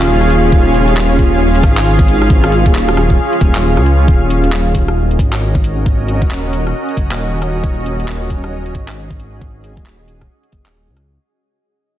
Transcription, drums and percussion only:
0.21 cross-stick soft
0.30 open hi-hat medium
0.52 kick loud
0.74 open hi-hat medium
0.88 closed hi-hat soft
0.97 clap loud
1.19 kick medium
1.19 open hi-hat medium
1.55 closed hi-hat soft
1.63 kick loud
1.63 cross-stick medium
1.63 open hi-hat medium
1.77 clap loud
1.77 closed hi-hat soft
1.99 kick loud
2.08 open hi-hat medium
2.22 cross-stick soft
2.30 kick loud
2.44 cross-stick medium
2.52 open hi-hat medium
2.66 kick loud
2.66 closed hi-hat soft
2.75 clap loud
2.88 cross-stick medium
2.97 cross-stick medium
2.97 open hi-hat medium
3.10 kick medium
3.33 closed hi-hat soft
3.41 kick loud
3.41 open hi-hat medium
3.55 clap loud
3.55 closed hi-hat soft
3.77 cross-stick soft
3.86 open hi-hat medium
4.08 kick loud
4.30 closed hi-hat medium
4.44 closed hi-hat soft
4.52 clap loud
4.75 kick medium
4.75 closed hi-hat medium
4.88 cross-stick medium
5.11 closed hi-hat soft
5.19 kick loud
5.19 closed hi-hat medium
5.33 cross-stick medium
5.33 clap loud
5.33 closed hi-hat soft
5.55 kick loud
5.64 closed hi-hat medium
5.86 kick loud
6.08 closed hi-hat medium
6.22 kick loud
6.22 closed hi-hat soft
6.31 clap loud
6.53 closed hi-hat medium
6.67 cross-stick soft
6.89 closed hi-hat soft
6.97 kick loud
6.97 closed hi-hat medium
7.11 clap loud
7.11 closed hi-hat soft
7.42 cross-stick medium
7.42 closed hi-hat medium
7.64 kick loud
7.86 closed hi-hat medium
8.00 closed hi-hat soft
8.08 clap loud
8.30 kick medium
8.30 closed hi-hat medium
8.44 cross-stick soft
8.66 closed hi-hat soft
8.75 kick loud
8.75 closed hi-hat medium
8.88 cross-stick medium
8.88 clap loud
8.88 closed hi-hat soft
9.11 kick loud
9.20 closed hi-hat medium
9.41 kick loud
9.64 closed hi-hat medium
9.77 kick loud
9.77 closed hi-hat soft
9.86 clap loud
10.08 closed hi-hat soft
10.21 kick medium
10.21 cross-stick soft
10.43 closed hi-hat soft
10.52 kick loud
10.52 closed hi-hat soft
10.66 clap medium
10.66 closed hi-hat soft
10.97 cross-stick soft
10.97 closed hi-hat soft

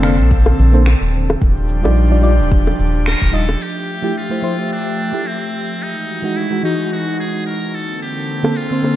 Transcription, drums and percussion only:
0.03 finger snap medium
0.03 high bongo medium
0.03 shaker medium
0.19 shaker soft
0.31 kick medium
0.31 shaker soft
0.46 high bongo medium
0.59 shaker medium
0.74 shaker soft
0.86 finger snap medium
0.86 high bongo medium
0.86 shaker soft
1.14 shaker medium
1.29 high bongo medium
1.29 shaker soft
1.41 kick loud
1.41 shaker soft
1.57 shaker soft
1.69 shaker medium
1.84 high bongo medium
1.84 shaker soft
1.96 shaker soft
2.23 shaker medium
2.39 shaker soft
2.51 kick loud
2.51 shaker soft
2.67 high bongo medium
2.67 shaker soft
2.79 shaker medium
2.94 shaker soft
3.06 finger snap medium
3.06 high bongo medium
3.06 shaker soft
3.22 kick medium
3.22 shaker soft
3.34 shaker medium
3.49 high bongo medium
3.49 shaker soft
8.44 high bongo medium
8.84 high bongo medium

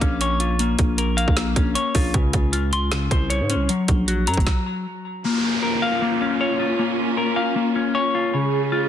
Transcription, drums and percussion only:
0.01 kick loud
0.01 closed hi-hat medium
0.21 closed hi-hat medium
0.40 closed hi-hat medium
0.59 closed hi-hat medium
0.79 kick medium
0.79 closed hi-hat medium
0.98 closed hi-hat medium
1.18 closed hi-hat medium
1.28 kick medium
1.37 snare loud
1.37 closed hi-hat medium
1.56 kick loud
1.56 closed hi-hat medium
1.75 closed hi-hat medium
1.95 kick medium
1.95 open hi-hat medium
2.14 kick loud
2.14 closed hi-hat medium
2.33 kick medium
2.33 closed hi-hat medium
2.53 closed hi-hat medium
2.73 closed hi-hat medium
2.92 snare loud
2.92 closed hi-hat medium
3.11 kick loud
3.11 closed hi-hat medium
3.30 closed hi-hat medium
3.50 closed hi-hat medium
3.69 closed hi-hat medium
3.88 kick medium
3.88 closed hi-hat medium
4.08 closed hi-hat medium
4.27 closed hi-hat medium
4.34 kick medium
4.34 closed hi-hat medium
4.40 closed hi-hat soft
4.47 kick loud
4.47 snare medium

